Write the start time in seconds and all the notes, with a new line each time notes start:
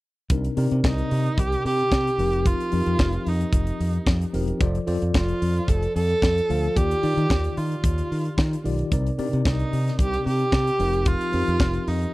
0.30 C2 C3 C4 D4 D#4 A#4, kick, closed hi-hat
0.44 closed hi-hat
0.57 C3 C4 D#4 A#4 D5, open hi-hat
0.71 C3, closed hi-hat
0.84 C2 D#4, kick, snare
0.98 closed hi-hat
1.11 C3, open hi-hat
1.26 closed hi-hat
1.38 C2 G4, kick, closed hi-hat
1.52 closed hi-hat
1.65 C3 G4, open hi-hat
1.79 closed hi-hat
1.92 C3, kick, snare
2.07 closed hi-hat
2.18 F1 F3 C4 D#4 G4 A#4, open hi-hat
2.33 closed hi-hat
2.46 F4, kick, closed hi-hat
2.60 closed hi-hat
2.72 F2 F3 C4 D#4 G4 A#4, open hi-hat
2.86 F2, closed hi-hat
2.99 F1, kick, snare
3.12 closed hi-hat
3.26 F2 D#4, open hi-hat
3.41 closed hi-hat
3.53 F1, kick, closed hi-hat
3.67 closed hi-hat
3.80 F2, open hi-hat
3.93 closed hi-hat
4.06 F2, kick, snare
4.22 closed hi-hat
4.33 E1 F3 C4 D#4 G4 A#4, open hi-hat
4.48 closed hi-hat
4.60 F1 F3 F4 A4 C5 D5, kick, closed hi-hat
4.75 closed hi-hat
4.86 F2 F3 F4 A4 C5 D5, open hi-hat
5.02 F2, closed hi-hat
5.14 F1 F4, kick, snare
5.28 closed hi-hat
5.42 F2, open hi-hat
5.56 closed hi-hat
5.68 F1 A4, kick, closed hi-hat
5.83 closed hi-hat
5.96 F2 A4, open hi-hat
6.09 closed hi-hat
6.22 F2, kick, snare
6.38 closed hi-hat
6.49 D2 F3 F4 A4 C5 F5, open hi-hat
6.64 closed hi-hat
6.75 D#2 D#3 D#4 F4 G4 D5, kick, closed hi-hat
6.91 closed hi-hat
7.03 D#3 D#4 F4 G4 D5, open hi-hat
7.17 D#3, closed hi-hat
7.30 D#2, kick, snare
7.44 closed hi-hat
7.57 D#3 F4, open hi-hat
7.72 closed hi-hat
7.84 D#2, kick, closed hi-hat
7.98 closed hi-hat
8.12 D#3, open hi-hat
8.25 closed hi-hat
8.38 D#3, kick, snare
8.53 closed hi-hat
8.64 B1 D#3 D#4 F4 G4 D5, open hi-hat
8.79 closed hi-hat
8.92 C2 C3 C4 D#4 A#4 D5, kick, closed hi-hat
9.07 closed hi-hat
9.18 C3 C4 D4 A#4 D5, open hi-hat
9.25 D#4
9.33 C3, closed hi-hat
9.45 C2 D#4, kick, snare
9.59 closed hi-hat
9.73 C3, open hi-hat
9.88 snare, closed hi-hat
9.99 C2 G4, kick, closed hi-hat
10.13 closed hi-hat
10.26 C3 G4, open hi-hat
10.40 closed hi-hat
10.52 C3, kick, snare
10.67 closed hi-hat
10.79 F1 F3 C4 D#4 G4 A#4, open hi-hat
10.93 closed hi-hat
11.05 F4, kick, closed hi-hat
11.21 closed hi-hat
11.32 F2 F3 C4 D#4 G4 A#4, open hi-hat
11.47 F2, closed hi-hat
11.60 F1, kick, snare
11.74 closed hi-hat
11.87 F2 D#4, open hi-hat
12.02 closed hi-hat